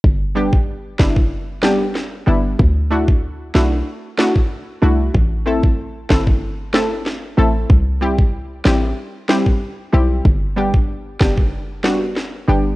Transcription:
<<
  \new Staff \with { instrumentName = "Synth pluck" } { \time 4/4 \key g \major \tempo 4 = 94 r8 <g b d' g'>8 r8 <g b d' e'>8 r8 <g b d' g'>8 r8 <g b d' e'>8 | r8 <a d' e' fis'>8 r8 <a d' e' fis'>8 r8 <a d' e' fis'>8 r8 <a d' e' fis'>8 | r8 <a c' e' a'>8 r8 <a c' e' a'>8 r8 <a c' e' a'>8 r8 <a c' e' a'>8 | r8 <g c' e' g'>8 r8 <g c' e' g'>8 r8 <g c' e' g'>8 r8 <g c' e' g'>8 |
r8 <g b d' g'>8 r8 <g b d' g'>8 r8 <g b d' fis'>8 r8 <g b d' g'>8 | }
  \new Staff \with { instrumentName = "808-style bass" } { \clef bass \time 4/4 \key g \major g,,4. fis,,2 g,,8 | d,4. b,,8 r4. c,8 | a,,4. g,,2 a,,8 | c,4. a,,8 r4. b,,8 |
g,,4. fis,,2 g,,8 | }
  \new DrumStaff \with { instrumentName = "Drums" } \drummode { \time 4/4 bd8. bd16 r8 <bd sn>16 bd16 r8 sn8 sn4 | bd8. bd16 r8 sn8 r8 sn16 bd16 r4 | bd8. bd16 r8 <bd sn>16 bd16 r8 sn8 sn4 | bd8. bd16 r8 sn8 r8 sn16 bd16 r4 |
bd8. bd16 r8 <bd sn>16 bd16 r8 sn8 sn4 | }
>>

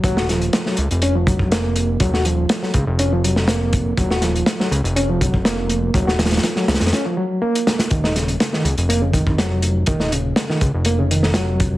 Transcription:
<<
  \new Staff \with { instrumentName = "Reed electric piano" } { \clef bass \time 4/4 \key ees \minor \tempo 4 = 122 ges16 ges'16 f8. ges16 r8 des'16 f16 ges8 bes4 | ges16 ges'16 f8. ges16 r8 des'16 f16 ges8 bes4 | ges16 ges'16 f8. ges16 r8 des'16 f16 ges8 bes4 | ges16 ges'16 f8. ges16 r8 des'16 f16 ges8 bes4 |
ees16 ees'16 des8. ees16 r8 bes16 des16 ees8 ges4 | ees16 ees'16 des8. ees16 r8 bes16 des16 ees8 ges4 | }
  \new Staff \with { instrumentName = "Analog synth bass" } { \clef bass \time 4/4 \key ees \minor ees,,4 r8 des,16 f,,2~ f,,16 | ees,,4 r8 des,16 f,,2~ f,,16 | ees,,4 r8 des,16 f,,2~ f,,16 | ees,,4 r8 des,16 f,,16 r2 |
ees,,4 r8 des,16 f,,2~ f,,16 | ees,,4 r8 des,16 f,,2~ f,,16 | }
  \new DrumStaff \with { instrumentName = "Drums" } \drummode { \time 4/4 <hh bd>16 sn16 <hh sn>16 hh16 <hh sn>16 sn16 hh16 hh16 hh8 <hh bd>16 bd16 <hh sn>8 hh8 | <hh bd>16 sn16 hh8 <hh sn>16 sn16 <hh bd>8 hh8 hh16 sn16 <hh sn>8 <hh bd>8 | <hh bd>16 sn16 <hh sn>16 hh16 <hh sn>16 sn16 hh16 hh16 hh8 <hh bd>16 bd16 <hh sn>8 hh8 | <hh bd>16 sn16 <hh sn>32 <hh sn>32 <hh sn>32 <hh sn>32 <hh sn>16 sn16 <hh sn>32 <hh sn>32 <hh sn>32 <hh sn>32 <hh sn>4 r16 hh16 <hh sn>16 <hh sn>16 |
<hh bd>16 sn16 <hh sn>16 hh16 <hh sn>16 sn16 hh16 hh16 hh8 <hh bd>16 bd16 <hh sn>8 hh8 | <hh bd>16 sn16 hh8 <hh sn>16 sn16 <hh bd>8 hh8 hh16 sn16 <hh sn>8 <hh bd>8 | }
>>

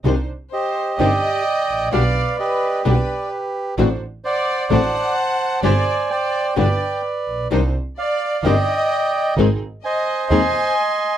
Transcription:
<<
  \new Staff \with { instrumentName = "Bandoneon" } { \time 4/4 \key c \minor \tempo 4 = 129 << { r4 ees''4 g''2 | f''4 ees''4 d''4 r4 | r4 fis''4 a''2 | aes''4 g''4 g''4 r4 |
r4 f''4 g''2 | r4 aes''4 c'''2 | } \\ { r4 g'4 <d'' ees''>2 | <b' d''>4 <g' b'>4 <g' b'>2 | r4 <c'' d''>4 <c'' fis''>2 | <c'' d''>4 <c'' d''>4 <b' d''>2 |
r4 d''4 <d'' ees''>2 | r4 <c'' ees''>4 <ees'' aes''>2 | } >> }
  \new Staff \with { instrumentName = "Violin section" } { \time 4/4 \key c \minor r4 c''4 ees''2 | d''4 b'4 b'4 r4 | r4 d''4 fis''2 | d''4 d''4 d''4 r4 |
r4 d''4 ees''2 | r4 ees''4 aes''2 | }
  \new Staff \with { instrumentName = "String section" } { \time 4/4 \key c \minor <d' ees' c''>8 r4. <d' ees' c''>8 r4. | <d' g' b'>8 r4. <d' g' b'>8 r4. | <d' fis' c''>8 r4. <d' fis' c''>8 r4. | <d' g' c''>8 r4. <d' g' b'>8 r4. |
<d' ees' c''>8 r4. <d' ees' c''>8 r4. | <c' ees' aes'>8 r4. <c' ees' aes'>8 r4. | }
  \new Staff \with { instrumentName = "Nylon-string guitar" } { \clef bass \time 4/4 \key c \minor <c ees g d' g'>8 r4. <c ees g d' g'>8 r4. | <b, d g b g'>8 r4. <b, d g b g'>8 r4. | <d a c' fis'>8 r4. <d a c' fis'>8 r4. | <c g c' d' g'>8 r4. <b, d g b g'>8 r4. |
<c ees g d' g'>8 r4. <c ees g d' g'>8 r4. | <ees aes c' ees' aes'>8 r4. <ees aes c' ees' aes'>8 r4. | }
  \new Staff \with { instrumentName = "Double bass" } { \clef bass \time 4/4 \key c \minor c,8 r4. g,,8 r4 a,,8 | b,,8 r4. b,,8 r4. | a,,8 r4. a,,8 r4. | g,,8 r4. g,,8 r4 bes,,8 |
c,8 r4. g,,8 r4. | aes,,8 r4. ees,8 r4. | }
>>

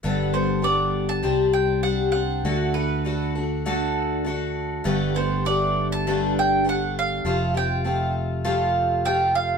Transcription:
<<
  \new Staff \with { instrumentName = "Mandolin" } { \time 4/4 \key g \major \tempo 4 = 100 r8 c''8 d''8. a''8. g''8 fis''8 fis''8~ | fis''8 b'4 r2 r8 | r8 c''8 d''8. a''8. g''8 fis''8 f''8~ | f''8 g''4 r4. g''8 f''8 | }
  \new Staff \with { instrumentName = "Twelve-string acoustic guitar" } { \time 4/4 \key g \major <g, d g b d' a'>8 <g b d' a'>8 <g b d' a'>4 <c g c' d' g'>4 <g c' d' g'>8 <c' d' g'>8 | <d a d' fis' a'>8 <d' fis' a'>8 <a d' fis' a'>8 <d' fis' a'>8 <d a d' fis' a'>4 <a d' fis' a'>4 | <g, d a b d' g'>8 <a b d' g'>8 <a b d' g'>4 <g, d a b d' g'>4 <a b d' g'>4 | <f a c' f' g'>8 <c' f' g'>8 <a c' f' g'>4 <f a c' f' g'>4 <a c' f' g'>4 | }
  \new Staff \with { instrumentName = "Fingered electric bass" } { \clef bass \time 4/4 \key g \major g,,2 c,2 | d,1 | g,,1 | f,,1 | }
>>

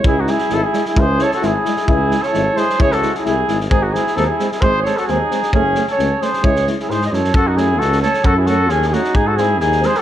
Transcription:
<<
  \new Staff \with { instrumentName = "Flugelhorn" } { \time 2/4 \key cis \minor \tempo 4 = 132 gis'16 fis'16 gis'8 a'16 gis'8 gis'16 | bis'8 cis''16 a'16 gis'4 | gis'8. cis''8. bis'8 | cis''16 a'8 gis'16 gis'8. r16 |
gis'16 fis'16 gis'8 a'16 gis'8 gis'16 | bis'8 cis''16 a'16 gis'4 | gis'8. cis''8. bis'8 | cis''8 r16 gis'16 bis'16. dis''32 cis''8 |
a'16 fis'16 gis'8 a'8 cis''8 | a'16 gis'16 a'8 gis'16. gis'32 fis'8 | gis'16 a'16 gis'8 gis'8 bis'16 a'16 | }
  \new Staff \with { instrumentName = "Euphonium" } { \time 2/4 \key cis \minor e'8 e'8 e'8 e'8 | e'8 e'8 e'8 e'8 | e'8 e'8 e'8 e'8 | e'8 e'8 e'8 e'8 |
bis8 bis8 bis8 bis8 | bis8 bis8 bis8 bis8 | cis'8 cis'8 cis'8 cis'8 | e'8 e'8 e'8 e'8 |
r8 cis'8 r8 cis'8 | r8 cis'8 r8 cis'8 | r8 bis8 r8 bis8 | }
  \new Staff \with { instrumentName = "Trumpet" } { \time 2/4 \key cis \minor e'16 dis'16 e'8 e'16 e'8 e'16 | gis'8 a'16 fis'16 e'4 | e'8. a'8. gis'8 | gis'16 fis'8 e'16 e'8. r16 |
dis'16 dis'16 e'8 dis'16 e'8 e'16 | gis'8 a'16 fis'16 dis'4 | cis'8. a'8. gis'8 | gis'8 r16 e'16 gis'16. bis'32 a'8 |
fis'16 dis'16 e'8 fis'8 a'8 | fis'16 e'16 fis'8 cis'16. e'32 dis'8 | dis'16 fis'16 e'8 dis'8 gis'16 r16 | }
  \new Staff \with { instrumentName = "Euphonium" } { \clef bass \time 2/4 \key cis \minor gis8 gis8 gis8 gis8 | gis8 gis8 gis8 gis8 | gis8 gis8 gis8 gis8 | gis8 gis8 gis8 gis8 |
gis8 gis8 gis8 gis8 | gis8 gis8 gis8 gis8 | a8 a8 a8 a8 | gis8 gis8 gis8 gis8 |
r8 a8 r8 a8 | r8 a8 r8 a8 | r8 gis8 r8 gis8 | }
  \new Staff \with { instrumentName = "Tuba" } { \clef bass \time 2/4 \key cis \minor cis,4 gis,,8 r8 | cis,4 gis,,8 r8 | cis,4 gis,,8 r8 | cis,4 bis,,8 gis,,8 |
gis,,4 dis,8 r8 | gis,,4 dis,8 r8 | fis,,4 cis,8 r8 | cis,4 gis,8 fis,8 |
fis,4 cis,4 | fis,4 dis,4 | gis,4 dis,4 | }
  \new DrumStaff \with { instrumentName = "Drums" } \drummode { \time 2/4 bd8 sn16 sn16 sn8 sn16 sn16 | bd8 sn16 sn16 sn8 sn16 sn16 | bd8 sn16 sn16 sn8 sn16 sn16 | bd16 sn16 sn16 sn16 sn8 sn16 sn16 |
bd8 sn16 sn16 sn8 sn16 sn16 | bd8 sn16 sn16 sn8 sn16 sn16 | bd8 sn16 sn16 sn8 sn16 sn16 | bd16 sn16 sn16 sn16 sn16 sn16 sn16 sn16 |
bd8 sn8 sn16 sn16 sn16 sn16 | bd8 sn8 sn16 sn16 sn16 sn16 | bd8 sn8 sn16 sn16 sn16 sn16 | }
>>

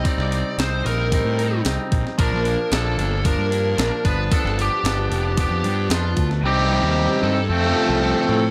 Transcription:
<<
  \new Staff \with { instrumentName = "Lead electric guitar" } { \time 4/4 \key c \dorian \tempo 4 = 113 d''4 c''8 bes'4. r4 | bes'4 a'4 bes'4. b'8 | a'8 g'4. g'4 f'8. r16 | g'8 g'4 a'2~ a'8 | }
  \new Staff \with { instrumentName = "Clean electric guitar" } { \time 4/4 \key c \dorian <ees' bes'>4 <bes ees' bes'>4. bes8 <c g bes ees' bes'>8 <bes ees' bes'>8 | r2. r8 <g, d b g'>8 | <g, d f b f' g'>4. r4. <f' g'>8 g'8 | r2 <c f c' f'>2 | }
  \new Staff \with { instrumentName = "Overdriven electric guitar" } { \time 4/4 \key c \dorian <g c' ees'>8 <c' ees'>8 <g c' ees'>8 <c' ees'>8 <g c' ees'>8 <c' ees'>8 <g c' ees'>4 | <f bes d'>8 <bes d'>8 <f bes d'>8 <bes d'>8 <f bes d'>8 <bes d'>8 <f bes d'>8 <f b d'>8 | <f b d'>8 <b d'>8 <f b d'>8 <b d'>8 <f b d'>8 <b d'>8 <f b d'>4 | <g c' ees'>2 <f a c'>2 | }
  \new Staff \with { instrumentName = "Picked electric bass" } { \clef bass \time 4/4 \key c \dorian r16 c,8 r16 c,8 bes,,8. a,8. c,16 r16 bes,,16 r16 | bes,,16 bes,,8 r16 bes,,8 g,,8. g,8. bes,,16 r16 g,,8 | r16 g,,8 r16 g,,8 f,,8. f,16 g,8 f,8 d,8 | c,8. ees,8 r16 g,8 f,8 r16 c,8 r16 a,8 | }
  \new DrumStaff \with { instrumentName = "Drums" } \drummode { \time 4/4 <hho bd>16 sn16 hho8 <hho sn>8 hho8 <hho bd>8 hho8 <hho sn>8 <hho bd>16 sn16 | <hho bd>8 hho8 <hho sn>8 hho8 <hho bd>8 hho8 <hho sn>8 <hho bd>8 | <hho bd>16 sn16 hho8 <hho sn>8 hho8 <hho bd>8 hho8 <hho sn>8 <hho bd>16 sn16 | r4 r4 r4 r4 | }
>>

